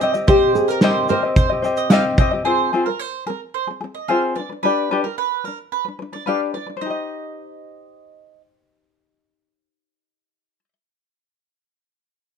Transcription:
Already playing: nylon-string guitar D#5
0.00 ukulele C4 G4 C5 D#5, mandolin D#5, shaker
0.14 ukulele C4 G4 D#5, shaker
0.27 ukulele C4 G4 C5 D#5, nylon-string guitar G4, mandolin C5, kick, shaker
0.55 nylon-string guitar G#4, shaker
0.68 mandolin A#4, nylon-string guitar A#4, shaker
0.81 ukulele C4 G4 C5 D#5, mandolin C5, snare, shaker
1.08 ukulele C4 G4 C5 D#5, mandolin A#4, nylon-string guitar C5, shaker
1.23 ukulele C4 G4 D#5
1.36 mandolin C5, kick, shaker
1.49 ukulele C4 G4 D#5
1.62 ukulele C4 G4 C5 D#5, shaker
1.77 mandolin D#5, shaker
1.90 ukulele C4 G4 C5 D#5, mandolin F5, snare, shaker
2.18 ukulele C4 G4 C5 D#5, mandolin D#5, kick, shaker
2.31 ukulele C4 G4 D#5
2.45 ukulele C4 F4 G#4 C5, mandolin C5
2.73 ukulele C4 F4 G#4 C5
2.86 ukulele G#4, mandolin A#4
2.99 mandolin C5
3.26 ukulele C4 G#4, mandolin A#4
3.54 mandolin C5
3.67 ukulele C4 G#4
3.81 ukulele C4 G#4
3.95 mandolin D#5
4.08 ukulele C4 F4 G#4 C5, mandolin F5
4.36 ukulele D4 B4, mandolin D5
4.50 ukulele D4 B4
4.63 ukulele D4 G4 B4 D5, mandolin B4
4.91 ukulele D4 G4 B4 D5
5.03 mandolin A#4, ukulele B4
5.18 mandolin B4
5.44 ukulele D4 B4, mandolin A#4
5.72 mandolin B4
5.85 ukulele D4 B4
5.99 ukulele D4 B4
6.13 ukulele D4 B4, mandolin D5
6.26 ukulele D4 G4 B4 D5, mandolin F5
6.54 ukulele B4, mandolin D5
6.67 ukulele D4 B4
6.77 ukulele C5
6.81 ukulele D#4, mandolin D#5
6.86 ukulele G4
6.90 ukulele D#5

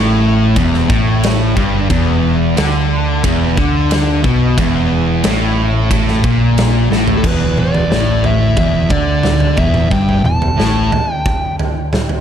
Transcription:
Already playing: fingered electric bass A1, distorted electric guitar A2
0.56 fingered electric bass E1, distorted electric guitar E2, kick, ride bell
0.74 snare
0.89 fingered electric bass A1, distorted electric guitar A2, kick
1.23 snare, ride bell
1.56 fingered electric bass G1, distorted electric guitar G2, kick
1.90 fingered electric bass E1, distorted electric guitar E2, kick, ride bell
2.57 fingered electric bass D2, distorted electric guitar D3, snare, ride bell
3.24 fingered electric bass E1, distorted electric guitar E2, kick, ride bell
3.57 fingered electric bass D2, distorted electric guitar D3, kick
3.91 snare, ride bell
4.24 fingered electric bass B1, distorted electric guitar B2, kick
4.58 fingered electric bass E1, distorted electric guitar E2, kick, ride bell
5.24 fingered electric bass A1, distorted electric guitar A2, snare, ride bell
5.91 fingered electric bass A1, distorted electric guitar A2, kick, ride bell
6.08 snare
6.24 fingered electric bass A#1, distorted electric guitar A#2, kick
6.58 snare, ride bell
6.91 fingered electric bass A1, distorted electric guitar A2, snare
7.08 floor tom
7.17 lead electric guitar A4
7.24 fingered electric bass E1, distorted electric guitar E2, kick, floor tom, crash
7.28 lead electric guitar B4
7.40 floor tom
7.57 lead electric guitar D5, mid tom
7.74 floor tom
7.91 fingered electric bass A1, distorted electric guitar A2, snare
8.24 lead electric guitar E5, floor tom
8.56 fingered electric bass E1, distorted electric guitar E2, lead electric guitar E5, kick, floor tom
8.89 fingered electric bass D2, distorted electric guitar D3, lead electric guitar D5, kick, floor tom
9.23 snare, floor tom, mid tom
9.40 floor tom
9.56 fingered electric bass E1, distorted electric guitar E2, lead electric guitar E5, kick, floor tom, mid tom
9.74 mid tom
9.90 fingered electric bass G1, distorted electric guitar G2, lead electric guitar G5, kick, floor tom
10.09 floor tom
10.24 fingered electric bass E1, distorted electric guitar E2, lead electric guitar A5, mid tom
10.42 floor tom
10.58 fingered electric bass A1, distorted electric guitar A2, snare
10.92 floor tom
11.14 lead electric guitar G5
11.26 kick, floor tom
11.59 floor tom
11.93 snare, floor tom, mid tom
12.09 floor tom

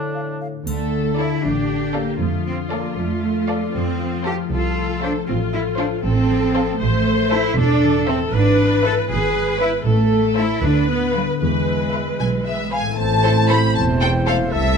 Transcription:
Already playing: bassoon A2, harp D3 A3 F4 D5, cor anglais D4
0.15 flute F5
0.41 flute F5
0.67 double bass section D2, harp D3, cello section A3, viola section A4, triangle
0.93 harp A3
1.18 cello section E4, harp F4, violin section A4 D5 F5
1.43 double bass section A1, harp A3, cello section D4, viola section G4
1.70 harp D4
1.95 cello section A#3, harp F4, violin section A4 D5 F5
2.20 double bass section F2, harp F3, cello section A3, viola section F4
2.46 cello section C4, harp F4
2.71 cello section A#3, violin section A4 D5 F5, harp D5
2.97 double bass section F2, cello section A3, harp F4
3.24 harp A3
3.49 violin section A4 D5 F5, harp D5
3.75 double bass section F2, harp F3, cello section C4
4.01 harp F4
4.25 cello section G4, violin section A4 C5 F5, harp C5
4.51 double bass section C2, cello section F4, harp F4, viola section A4
4.78 harp A3
5.02 cello section D4, violin section A4 C5 F5, harp C5
5.28 double bass section A1, harp A2, cello section C4, viola section F4
5.53 harp A3, cello section E4
5.78 cello section D4, harp F4, violin section A4 C5 F5
6.04 double bass section A1, harp A3, cello section C4, viola section A4
6.30 harp F3
6.55 harp F4, violin section A4 C5 F5
6.80 double bass section A1, harp A2, cello section A3, viola section C5
7.07 harp A3
7.31 cello section E4, harp E4, violin section A4 C5 E5
7.57 double bass section E1, harp A3, cello section D4, viola section A4
7.84 harp E3
8.08 cello section C4, harp E4, violin section A4 C5 E5
8.33 double bass section G#1, harp G#2, cello section D4, viola section B4
8.59 harp B3
8.84 harp E4, cello section A4, violin section B4 E5
9.09 double bass section G#1, harp B3, cello section G#4, viola section B4
9.35 harp G#3
9.59 harp E4, cello section E4, violin section B4 E5
9.86 double bass section A1, harp A2, cello section A3, viola section A4
10.12 harp A3
10.36 harp E4 C5, cello section E4, violin section A4 C5 E5
10.63 double bass section D2, harp D3, cello section D4, viola section B4
10.89 harp B3, cello section B3
11.15 cello section G3, harp F4 B4, violin section B4 F5
11.41 double bass section E2, harp E3, cello section G#3, viola section B4
11.68 harp E4
11.93 violin section B4 E5, harp B4
12.20 double bass section B1, harp E4, violin section G#5
12.46 harp B3, violin section E5
12.72 harp B4, violin section B4 F5 G#5, flute G#5
12.81 harp A2
12.85 harp C4
12.90 harp E4
12.94 cello section A2, harp A4, cor anglais C5
12.99 double bass section A1, french horn section C4 E4, flute A5, violin section A5
13.23 viola section A3 E4, violin section A4 C5
13.48 viola section A3 E4, violin section A4 C5 B5, flute B5
13.75 double bass section E1, cello section E2, violin section A5, flute A5
14.00 viola section A3 E4, violin section A4 C5 G5, flute G5
14.26 viola section A3 E4, violin section A4 C5 F5, flute F5
14.34 harp C3
14.39 harp A3
14.43 harp E4
14.48 french horn section A3, harp A4
14.52 double bass section C2, cello section C3, cor anglais A4, violin section E5, flute E5

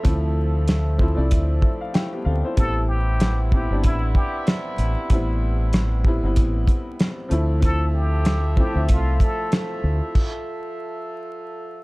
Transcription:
Already playing: upright piano F3 A3 C4 E4 E5, horn section F3 A4 E5
0.03 fingered electric bass D2, upright piano F3 A3 C4 E4, kick, closed hi-hat
0.68 cross-stick, snare, closed hi-hat
0.98 upright piano F3 A3 C4 E4 C5, kick
1.15 fingered electric bass C2, upright piano F3 A3 C4 E4 D5
1.31 fingered electric bass D2, upright piano E5, kick, closed hi-hat
1.62 upright piano E5, kick
1.81 upright piano F5
1.94 upright piano G3 E4 G5, cross-stick, snare, closed hi-hat
2.13 upright piano B3 G4
2.25 fingered electric bass D2, upright piano C4 A4 F5
2.45 upright piano E4 C5
2.55 fingered electric bass A1, horn section C3 B3 E4, upright piano G3 B3 C4 E4, muted trumpet A4, kick, closed hi-hat
2.88 muted trumpet G4
3.20 cross-stick, snare, closed hi-hat
3.52 upright piano G3 B3 C4 E4, muted trumpet G4, kick
3.69 fingered electric bass G1, upright piano G3 B3 C4 D4
3.84 fingered electric bass A1, muted trumpet E4, kick, closed hi-hat
4.15 muted trumpet G4, kick
4.47 cross-stick, snare, closed hi-hat
4.78 fingered electric bass A1, closed hi-hat
5.10 fingered electric bass A1, upright piano G3 B3 C4 E4, kick, closed hi-hat
5.73 cross-stick, snare, closed hi-hat
6.04 upright piano G3 B3 C4 E4, kick
6.22 fingered electric bass G1, upright piano G3 B3 C4 E4
6.36 fingered electric bass A1, kick, closed hi-hat
6.68 kick, closed hi-hat
6.99 cross-stick, snare, closed hi-hat
7.29 fingered electric bass D2, upright piano F3 A3 C4 E4, horn section F3 A4 E5, closed hi-hat
7.60 upright piano F3 A3 C4 E4, kick, closed hi-hat
7.64 muted trumpet A4
7.94 muted trumpet G4
8.25 cross-stick, snare, closed hi-hat
8.56 upright piano F3 A3 C4 E4, muted trumpet G4, kick
8.73 fingered electric bass D2, upright piano F3 A3 C4 E5
8.89 fingered electric bass C2, muted trumpet F4, kick, closed hi-hat
9.20 muted trumpet A4, kick, closed hi-hat
9.52 cross-stick, snare, closed hi-hat
9.84 fingered electric bass D2
10.15 kick, crash

